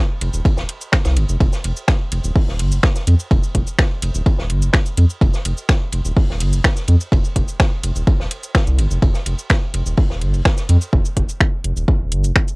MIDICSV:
0, 0, Header, 1, 3, 480
1, 0, Start_track
1, 0, Tempo, 476190
1, 1416, Time_signature, 4, 2, 24, 8
1, 12657, End_track
2, 0, Start_track
2, 0, Title_t, "Analog synth bass"
2, 0, Program_c, 0, 38
2, 216, Note_on_c, 0, 29, 81
2, 292, Note_off_c, 0, 29, 0
2, 341, Note_on_c, 0, 27, 102
2, 411, Note_off_c, 0, 27, 0
2, 581, Note_on_c, 0, 27, 108
2, 651, Note_off_c, 0, 27, 0
2, 1061, Note_on_c, 0, 36, 82
2, 1176, Note_on_c, 0, 31, 94
2, 1192, Note_off_c, 0, 36, 0
2, 1252, Note_off_c, 0, 31, 0
2, 1301, Note_on_c, 0, 29, 90
2, 1371, Note_off_c, 0, 29, 0
2, 1416, Note_on_c, 0, 29, 101
2, 1492, Note_off_c, 0, 29, 0
2, 1657, Note_on_c, 0, 29, 76
2, 1733, Note_off_c, 0, 29, 0
2, 2136, Note_on_c, 0, 29, 85
2, 2212, Note_off_c, 0, 29, 0
2, 2262, Note_on_c, 0, 27, 103
2, 2332, Note_off_c, 0, 27, 0
2, 2502, Note_on_c, 0, 27, 105
2, 2617, Note_on_c, 0, 31, 109
2, 2632, Note_off_c, 0, 27, 0
2, 2741, Note_on_c, 0, 29, 88
2, 2756, Note_off_c, 0, 31, 0
2, 2811, Note_off_c, 0, 29, 0
2, 3096, Note_on_c, 0, 41, 93
2, 3172, Note_off_c, 0, 41, 0
2, 3336, Note_on_c, 0, 29, 99
2, 3412, Note_off_c, 0, 29, 0
2, 3576, Note_on_c, 0, 29, 79
2, 3652, Note_off_c, 0, 29, 0
2, 4056, Note_on_c, 0, 29, 81
2, 4132, Note_off_c, 0, 29, 0
2, 4181, Note_on_c, 0, 27, 105
2, 4251, Note_off_c, 0, 27, 0
2, 4420, Note_on_c, 0, 27, 106
2, 4535, Note_on_c, 0, 31, 106
2, 4551, Note_off_c, 0, 27, 0
2, 4661, Note_on_c, 0, 29, 87
2, 4676, Note_off_c, 0, 31, 0
2, 4731, Note_off_c, 0, 29, 0
2, 5016, Note_on_c, 0, 41, 94
2, 5092, Note_off_c, 0, 41, 0
2, 5256, Note_on_c, 0, 29, 104
2, 5332, Note_off_c, 0, 29, 0
2, 5496, Note_on_c, 0, 29, 80
2, 5572, Note_off_c, 0, 29, 0
2, 5975, Note_on_c, 0, 29, 80
2, 6052, Note_off_c, 0, 29, 0
2, 6100, Note_on_c, 0, 27, 105
2, 6171, Note_off_c, 0, 27, 0
2, 6341, Note_on_c, 0, 27, 105
2, 6456, Note_on_c, 0, 31, 103
2, 6471, Note_off_c, 0, 27, 0
2, 6581, Note_on_c, 0, 29, 84
2, 6596, Note_off_c, 0, 31, 0
2, 6651, Note_off_c, 0, 29, 0
2, 6936, Note_on_c, 0, 41, 97
2, 7012, Note_off_c, 0, 41, 0
2, 7176, Note_on_c, 0, 29, 101
2, 7252, Note_off_c, 0, 29, 0
2, 7416, Note_on_c, 0, 29, 83
2, 7492, Note_off_c, 0, 29, 0
2, 7897, Note_on_c, 0, 29, 81
2, 7973, Note_off_c, 0, 29, 0
2, 8022, Note_on_c, 0, 27, 99
2, 8092, Note_off_c, 0, 27, 0
2, 8262, Note_on_c, 0, 27, 106
2, 8332, Note_off_c, 0, 27, 0
2, 8741, Note_on_c, 0, 36, 85
2, 8856, Note_on_c, 0, 31, 93
2, 8871, Note_off_c, 0, 36, 0
2, 8932, Note_off_c, 0, 31, 0
2, 8980, Note_on_c, 0, 29, 90
2, 9051, Note_off_c, 0, 29, 0
2, 9096, Note_on_c, 0, 29, 101
2, 9172, Note_off_c, 0, 29, 0
2, 9335, Note_on_c, 0, 29, 80
2, 9412, Note_off_c, 0, 29, 0
2, 9816, Note_on_c, 0, 29, 85
2, 9892, Note_off_c, 0, 29, 0
2, 9941, Note_on_c, 0, 27, 106
2, 10011, Note_off_c, 0, 27, 0
2, 10181, Note_on_c, 0, 27, 105
2, 10295, Note_on_c, 0, 31, 106
2, 10311, Note_off_c, 0, 27, 0
2, 10421, Note_on_c, 0, 29, 84
2, 10436, Note_off_c, 0, 31, 0
2, 10491, Note_off_c, 0, 29, 0
2, 10776, Note_on_c, 0, 41, 95
2, 10852, Note_off_c, 0, 41, 0
2, 11015, Note_on_c, 0, 29, 102
2, 11092, Note_off_c, 0, 29, 0
2, 11255, Note_on_c, 0, 29, 81
2, 11332, Note_off_c, 0, 29, 0
2, 11736, Note_on_c, 0, 29, 85
2, 11812, Note_off_c, 0, 29, 0
2, 11861, Note_on_c, 0, 27, 103
2, 11931, Note_off_c, 0, 27, 0
2, 12101, Note_on_c, 0, 27, 102
2, 12216, Note_on_c, 0, 31, 102
2, 12231, Note_off_c, 0, 27, 0
2, 12341, Note_on_c, 0, 29, 85
2, 12356, Note_off_c, 0, 31, 0
2, 12411, Note_off_c, 0, 29, 0
2, 12657, End_track
3, 0, Start_track
3, 0, Title_t, "Drums"
3, 215, Note_on_c, 9, 51, 74
3, 216, Note_on_c, 9, 42, 87
3, 316, Note_off_c, 9, 51, 0
3, 317, Note_off_c, 9, 42, 0
3, 341, Note_on_c, 9, 82, 56
3, 441, Note_off_c, 9, 82, 0
3, 456, Note_on_c, 9, 36, 116
3, 459, Note_on_c, 9, 51, 91
3, 557, Note_off_c, 9, 36, 0
3, 560, Note_off_c, 9, 51, 0
3, 577, Note_on_c, 9, 38, 59
3, 581, Note_on_c, 9, 82, 31
3, 678, Note_off_c, 9, 38, 0
3, 682, Note_off_c, 9, 82, 0
3, 696, Note_on_c, 9, 42, 92
3, 696, Note_on_c, 9, 51, 66
3, 796, Note_off_c, 9, 42, 0
3, 797, Note_off_c, 9, 51, 0
3, 820, Note_on_c, 9, 42, 35
3, 820, Note_on_c, 9, 82, 54
3, 921, Note_off_c, 9, 42, 0
3, 921, Note_off_c, 9, 82, 0
3, 930, Note_on_c, 9, 38, 107
3, 936, Note_on_c, 9, 26, 97
3, 936, Note_on_c, 9, 36, 119
3, 941, Note_on_c, 9, 51, 84
3, 1031, Note_off_c, 9, 38, 0
3, 1037, Note_off_c, 9, 26, 0
3, 1037, Note_off_c, 9, 36, 0
3, 1041, Note_off_c, 9, 51, 0
3, 1055, Note_on_c, 9, 51, 83
3, 1060, Note_on_c, 9, 38, 94
3, 1061, Note_on_c, 9, 42, 35
3, 1061, Note_on_c, 9, 82, 44
3, 1156, Note_off_c, 9, 51, 0
3, 1161, Note_off_c, 9, 38, 0
3, 1162, Note_off_c, 9, 42, 0
3, 1162, Note_off_c, 9, 82, 0
3, 1174, Note_on_c, 9, 51, 70
3, 1176, Note_on_c, 9, 42, 86
3, 1275, Note_off_c, 9, 51, 0
3, 1277, Note_off_c, 9, 42, 0
3, 1301, Note_on_c, 9, 82, 57
3, 1402, Note_off_c, 9, 82, 0
3, 1416, Note_on_c, 9, 36, 121
3, 1418, Note_on_c, 9, 51, 94
3, 1517, Note_off_c, 9, 36, 0
3, 1518, Note_off_c, 9, 51, 0
3, 1538, Note_on_c, 9, 38, 43
3, 1541, Note_on_c, 9, 82, 45
3, 1639, Note_off_c, 9, 38, 0
3, 1642, Note_off_c, 9, 82, 0
3, 1656, Note_on_c, 9, 42, 94
3, 1660, Note_on_c, 9, 51, 74
3, 1757, Note_off_c, 9, 42, 0
3, 1761, Note_off_c, 9, 51, 0
3, 1781, Note_on_c, 9, 82, 55
3, 1882, Note_off_c, 9, 82, 0
3, 1893, Note_on_c, 9, 38, 114
3, 1896, Note_on_c, 9, 26, 93
3, 1896, Note_on_c, 9, 36, 125
3, 1898, Note_on_c, 9, 51, 81
3, 1994, Note_off_c, 9, 38, 0
3, 1997, Note_off_c, 9, 26, 0
3, 1997, Note_off_c, 9, 36, 0
3, 1999, Note_off_c, 9, 51, 0
3, 2136, Note_on_c, 9, 42, 93
3, 2139, Note_on_c, 9, 51, 76
3, 2236, Note_off_c, 9, 42, 0
3, 2239, Note_off_c, 9, 51, 0
3, 2261, Note_on_c, 9, 82, 55
3, 2362, Note_off_c, 9, 82, 0
3, 2376, Note_on_c, 9, 36, 116
3, 2382, Note_on_c, 9, 46, 85
3, 2477, Note_off_c, 9, 36, 0
3, 2483, Note_off_c, 9, 46, 0
3, 2505, Note_on_c, 9, 38, 43
3, 2606, Note_off_c, 9, 38, 0
3, 2616, Note_on_c, 9, 42, 93
3, 2621, Note_on_c, 9, 51, 66
3, 2717, Note_off_c, 9, 42, 0
3, 2721, Note_off_c, 9, 51, 0
3, 2740, Note_on_c, 9, 42, 37
3, 2740, Note_on_c, 9, 82, 58
3, 2841, Note_off_c, 9, 42, 0
3, 2841, Note_off_c, 9, 82, 0
3, 2852, Note_on_c, 9, 51, 80
3, 2856, Note_on_c, 9, 26, 101
3, 2856, Note_on_c, 9, 36, 125
3, 2856, Note_on_c, 9, 38, 120
3, 2953, Note_off_c, 9, 51, 0
3, 2957, Note_off_c, 9, 26, 0
3, 2957, Note_off_c, 9, 36, 0
3, 2957, Note_off_c, 9, 38, 0
3, 2981, Note_on_c, 9, 42, 37
3, 2981, Note_on_c, 9, 82, 42
3, 2982, Note_on_c, 9, 38, 48
3, 3082, Note_off_c, 9, 42, 0
3, 3082, Note_off_c, 9, 82, 0
3, 3083, Note_off_c, 9, 38, 0
3, 3096, Note_on_c, 9, 42, 90
3, 3102, Note_on_c, 9, 51, 65
3, 3197, Note_off_c, 9, 42, 0
3, 3203, Note_off_c, 9, 51, 0
3, 3221, Note_on_c, 9, 82, 59
3, 3321, Note_off_c, 9, 82, 0
3, 3336, Note_on_c, 9, 36, 127
3, 3338, Note_on_c, 9, 51, 88
3, 3437, Note_off_c, 9, 36, 0
3, 3439, Note_off_c, 9, 51, 0
3, 3461, Note_on_c, 9, 82, 45
3, 3561, Note_off_c, 9, 82, 0
3, 3575, Note_on_c, 9, 51, 60
3, 3576, Note_on_c, 9, 36, 62
3, 3576, Note_on_c, 9, 42, 100
3, 3675, Note_off_c, 9, 51, 0
3, 3677, Note_off_c, 9, 36, 0
3, 3677, Note_off_c, 9, 42, 0
3, 3701, Note_on_c, 9, 82, 56
3, 3801, Note_off_c, 9, 82, 0
3, 3816, Note_on_c, 9, 26, 94
3, 3816, Note_on_c, 9, 36, 127
3, 3818, Note_on_c, 9, 38, 117
3, 3819, Note_on_c, 9, 51, 90
3, 3917, Note_off_c, 9, 26, 0
3, 3917, Note_off_c, 9, 36, 0
3, 3918, Note_off_c, 9, 38, 0
3, 3920, Note_off_c, 9, 51, 0
3, 4056, Note_on_c, 9, 42, 99
3, 4062, Note_on_c, 9, 51, 77
3, 4156, Note_off_c, 9, 42, 0
3, 4163, Note_off_c, 9, 51, 0
3, 4181, Note_on_c, 9, 82, 55
3, 4281, Note_off_c, 9, 82, 0
3, 4296, Note_on_c, 9, 36, 121
3, 4297, Note_on_c, 9, 51, 86
3, 4397, Note_off_c, 9, 36, 0
3, 4398, Note_off_c, 9, 51, 0
3, 4421, Note_on_c, 9, 38, 56
3, 4522, Note_off_c, 9, 38, 0
3, 4535, Note_on_c, 9, 42, 101
3, 4536, Note_on_c, 9, 51, 60
3, 4636, Note_off_c, 9, 42, 0
3, 4637, Note_off_c, 9, 51, 0
3, 4660, Note_on_c, 9, 42, 39
3, 4660, Note_on_c, 9, 82, 55
3, 4761, Note_off_c, 9, 42, 0
3, 4761, Note_off_c, 9, 82, 0
3, 4769, Note_on_c, 9, 38, 112
3, 4775, Note_on_c, 9, 26, 98
3, 4776, Note_on_c, 9, 36, 127
3, 4776, Note_on_c, 9, 51, 82
3, 4870, Note_off_c, 9, 38, 0
3, 4876, Note_off_c, 9, 26, 0
3, 4877, Note_off_c, 9, 36, 0
3, 4877, Note_off_c, 9, 51, 0
3, 4900, Note_on_c, 9, 42, 39
3, 4900, Note_on_c, 9, 82, 45
3, 5001, Note_off_c, 9, 42, 0
3, 5001, Note_off_c, 9, 82, 0
3, 5015, Note_on_c, 9, 42, 93
3, 5022, Note_on_c, 9, 51, 63
3, 5116, Note_off_c, 9, 42, 0
3, 5122, Note_off_c, 9, 51, 0
3, 5140, Note_on_c, 9, 82, 56
3, 5241, Note_off_c, 9, 82, 0
3, 5256, Note_on_c, 9, 36, 127
3, 5261, Note_on_c, 9, 51, 88
3, 5357, Note_off_c, 9, 36, 0
3, 5362, Note_off_c, 9, 51, 0
3, 5381, Note_on_c, 9, 38, 45
3, 5381, Note_on_c, 9, 82, 41
3, 5481, Note_off_c, 9, 82, 0
3, 5482, Note_off_c, 9, 38, 0
3, 5496, Note_on_c, 9, 42, 103
3, 5497, Note_on_c, 9, 51, 72
3, 5597, Note_off_c, 9, 42, 0
3, 5598, Note_off_c, 9, 51, 0
3, 5621, Note_on_c, 9, 82, 51
3, 5722, Note_off_c, 9, 82, 0
3, 5734, Note_on_c, 9, 38, 115
3, 5736, Note_on_c, 9, 26, 94
3, 5736, Note_on_c, 9, 36, 127
3, 5737, Note_on_c, 9, 51, 81
3, 5835, Note_off_c, 9, 38, 0
3, 5836, Note_off_c, 9, 26, 0
3, 5837, Note_off_c, 9, 36, 0
3, 5838, Note_off_c, 9, 51, 0
3, 5971, Note_on_c, 9, 51, 74
3, 5976, Note_on_c, 9, 42, 95
3, 6072, Note_off_c, 9, 51, 0
3, 6077, Note_off_c, 9, 42, 0
3, 6101, Note_on_c, 9, 82, 52
3, 6202, Note_off_c, 9, 82, 0
3, 6216, Note_on_c, 9, 36, 126
3, 6219, Note_on_c, 9, 46, 82
3, 6317, Note_off_c, 9, 36, 0
3, 6320, Note_off_c, 9, 46, 0
3, 6352, Note_on_c, 9, 38, 43
3, 6453, Note_off_c, 9, 38, 0
3, 6456, Note_on_c, 9, 42, 99
3, 6463, Note_on_c, 9, 51, 67
3, 6557, Note_off_c, 9, 42, 0
3, 6564, Note_off_c, 9, 51, 0
3, 6581, Note_on_c, 9, 42, 40
3, 6581, Note_on_c, 9, 82, 53
3, 6682, Note_off_c, 9, 42, 0
3, 6682, Note_off_c, 9, 82, 0
3, 6696, Note_on_c, 9, 26, 93
3, 6696, Note_on_c, 9, 36, 127
3, 6699, Note_on_c, 9, 38, 127
3, 6706, Note_on_c, 9, 51, 94
3, 6797, Note_off_c, 9, 26, 0
3, 6797, Note_off_c, 9, 36, 0
3, 6800, Note_off_c, 9, 38, 0
3, 6807, Note_off_c, 9, 51, 0
3, 6821, Note_on_c, 9, 42, 39
3, 6821, Note_on_c, 9, 82, 42
3, 6823, Note_on_c, 9, 38, 43
3, 6922, Note_off_c, 9, 42, 0
3, 6922, Note_off_c, 9, 82, 0
3, 6924, Note_off_c, 9, 38, 0
3, 6930, Note_on_c, 9, 51, 66
3, 6936, Note_on_c, 9, 42, 92
3, 7031, Note_off_c, 9, 51, 0
3, 7037, Note_off_c, 9, 42, 0
3, 7061, Note_on_c, 9, 82, 53
3, 7162, Note_off_c, 9, 82, 0
3, 7176, Note_on_c, 9, 36, 127
3, 7184, Note_on_c, 9, 51, 96
3, 7277, Note_off_c, 9, 36, 0
3, 7285, Note_off_c, 9, 51, 0
3, 7301, Note_on_c, 9, 82, 41
3, 7402, Note_off_c, 9, 82, 0
3, 7414, Note_on_c, 9, 51, 69
3, 7416, Note_on_c, 9, 36, 62
3, 7416, Note_on_c, 9, 42, 95
3, 7515, Note_off_c, 9, 51, 0
3, 7517, Note_off_c, 9, 36, 0
3, 7517, Note_off_c, 9, 42, 0
3, 7541, Note_on_c, 9, 82, 51
3, 7642, Note_off_c, 9, 82, 0
3, 7656, Note_on_c, 9, 26, 90
3, 7656, Note_on_c, 9, 36, 123
3, 7656, Note_on_c, 9, 51, 85
3, 7660, Note_on_c, 9, 38, 115
3, 7757, Note_off_c, 9, 26, 0
3, 7757, Note_off_c, 9, 36, 0
3, 7757, Note_off_c, 9, 51, 0
3, 7760, Note_off_c, 9, 38, 0
3, 7896, Note_on_c, 9, 42, 93
3, 7897, Note_on_c, 9, 51, 65
3, 7997, Note_off_c, 9, 42, 0
3, 7998, Note_off_c, 9, 51, 0
3, 8021, Note_on_c, 9, 82, 52
3, 8122, Note_off_c, 9, 82, 0
3, 8135, Note_on_c, 9, 51, 88
3, 8136, Note_on_c, 9, 36, 127
3, 8235, Note_off_c, 9, 51, 0
3, 8237, Note_off_c, 9, 36, 0
3, 8264, Note_on_c, 9, 38, 55
3, 8365, Note_off_c, 9, 38, 0
3, 8375, Note_on_c, 9, 51, 67
3, 8376, Note_on_c, 9, 42, 95
3, 8476, Note_off_c, 9, 51, 0
3, 8477, Note_off_c, 9, 42, 0
3, 8501, Note_on_c, 9, 42, 37
3, 8501, Note_on_c, 9, 82, 50
3, 8602, Note_off_c, 9, 42, 0
3, 8602, Note_off_c, 9, 82, 0
3, 8616, Note_on_c, 9, 26, 94
3, 8616, Note_on_c, 9, 36, 127
3, 8621, Note_on_c, 9, 51, 93
3, 8627, Note_on_c, 9, 38, 127
3, 8717, Note_off_c, 9, 26, 0
3, 8717, Note_off_c, 9, 36, 0
3, 8722, Note_off_c, 9, 51, 0
3, 8728, Note_off_c, 9, 38, 0
3, 8741, Note_on_c, 9, 42, 39
3, 8741, Note_on_c, 9, 82, 42
3, 8842, Note_off_c, 9, 42, 0
3, 8842, Note_off_c, 9, 82, 0
3, 8856, Note_on_c, 9, 42, 91
3, 8857, Note_on_c, 9, 51, 76
3, 8957, Note_off_c, 9, 42, 0
3, 8958, Note_off_c, 9, 51, 0
3, 8981, Note_on_c, 9, 82, 52
3, 9082, Note_off_c, 9, 82, 0
3, 9096, Note_on_c, 9, 36, 124
3, 9097, Note_on_c, 9, 51, 91
3, 9197, Note_off_c, 9, 36, 0
3, 9197, Note_off_c, 9, 51, 0
3, 9212, Note_on_c, 9, 38, 43
3, 9221, Note_on_c, 9, 82, 42
3, 9313, Note_off_c, 9, 38, 0
3, 9322, Note_off_c, 9, 82, 0
3, 9332, Note_on_c, 9, 51, 71
3, 9336, Note_on_c, 9, 42, 94
3, 9433, Note_off_c, 9, 51, 0
3, 9437, Note_off_c, 9, 42, 0
3, 9461, Note_on_c, 9, 82, 52
3, 9562, Note_off_c, 9, 82, 0
3, 9571, Note_on_c, 9, 51, 86
3, 9576, Note_on_c, 9, 26, 88
3, 9576, Note_on_c, 9, 36, 120
3, 9577, Note_on_c, 9, 38, 118
3, 9672, Note_off_c, 9, 51, 0
3, 9677, Note_off_c, 9, 26, 0
3, 9677, Note_off_c, 9, 36, 0
3, 9678, Note_off_c, 9, 38, 0
3, 9816, Note_on_c, 9, 42, 90
3, 9818, Note_on_c, 9, 51, 68
3, 9917, Note_off_c, 9, 42, 0
3, 9919, Note_off_c, 9, 51, 0
3, 9941, Note_on_c, 9, 82, 53
3, 10042, Note_off_c, 9, 82, 0
3, 10050, Note_on_c, 9, 46, 74
3, 10056, Note_on_c, 9, 36, 117
3, 10151, Note_off_c, 9, 46, 0
3, 10157, Note_off_c, 9, 36, 0
3, 10182, Note_on_c, 9, 38, 43
3, 10283, Note_off_c, 9, 38, 0
3, 10294, Note_on_c, 9, 51, 68
3, 10296, Note_on_c, 9, 42, 95
3, 10395, Note_off_c, 9, 51, 0
3, 10397, Note_off_c, 9, 42, 0
3, 10421, Note_on_c, 9, 42, 37
3, 10421, Note_on_c, 9, 82, 49
3, 10522, Note_off_c, 9, 42, 0
3, 10522, Note_off_c, 9, 82, 0
3, 10534, Note_on_c, 9, 51, 85
3, 10536, Note_on_c, 9, 26, 90
3, 10536, Note_on_c, 9, 36, 127
3, 10539, Note_on_c, 9, 38, 127
3, 10635, Note_off_c, 9, 51, 0
3, 10636, Note_off_c, 9, 26, 0
3, 10637, Note_off_c, 9, 36, 0
3, 10639, Note_off_c, 9, 38, 0
3, 10658, Note_on_c, 9, 38, 46
3, 10660, Note_on_c, 9, 42, 38
3, 10660, Note_on_c, 9, 82, 41
3, 10759, Note_off_c, 9, 38, 0
3, 10761, Note_off_c, 9, 42, 0
3, 10761, Note_off_c, 9, 82, 0
3, 10775, Note_on_c, 9, 42, 88
3, 10779, Note_on_c, 9, 51, 70
3, 10876, Note_off_c, 9, 42, 0
3, 10880, Note_off_c, 9, 51, 0
3, 10900, Note_on_c, 9, 82, 51
3, 11001, Note_off_c, 9, 82, 0
3, 11016, Note_on_c, 9, 36, 115
3, 11117, Note_off_c, 9, 36, 0
3, 11140, Note_on_c, 9, 82, 45
3, 11241, Note_off_c, 9, 82, 0
3, 11255, Note_on_c, 9, 42, 93
3, 11256, Note_on_c, 9, 36, 61
3, 11356, Note_off_c, 9, 36, 0
3, 11356, Note_off_c, 9, 42, 0
3, 11381, Note_on_c, 9, 82, 55
3, 11481, Note_off_c, 9, 82, 0
3, 11496, Note_on_c, 9, 26, 86
3, 11496, Note_on_c, 9, 36, 118
3, 11596, Note_off_c, 9, 36, 0
3, 11597, Note_off_c, 9, 26, 0
3, 11736, Note_on_c, 9, 42, 92
3, 11837, Note_off_c, 9, 42, 0
3, 11861, Note_on_c, 9, 82, 54
3, 11962, Note_off_c, 9, 82, 0
3, 11976, Note_on_c, 9, 36, 113
3, 12077, Note_off_c, 9, 36, 0
3, 12216, Note_on_c, 9, 42, 87
3, 12316, Note_off_c, 9, 42, 0
3, 12341, Note_on_c, 9, 42, 35
3, 12341, Note_on_c, 9, 82, 51
3, 12441, Note_off_c, 9, 42, 0
3, 12441, Note_off_c, 9, 82, 0
3, 12456, Note_on_c, 9, 26, 90
3, 12456, Note_on_c, 9, 36, 119
3, 12556, Note_off_c, 9, 26, 0
3, 12557, Note_off_c, 9, 36, 0
3, 12581, Note_on_c, 9, 42, 36
3, 12581, Note_on_c, 9, 82, 43
3, 12657, Note_off_c, 9, 42, 0
3, 12657, Note_off_c, 9, 82, 0
3, 12657, End_track
0, 0, End_of_file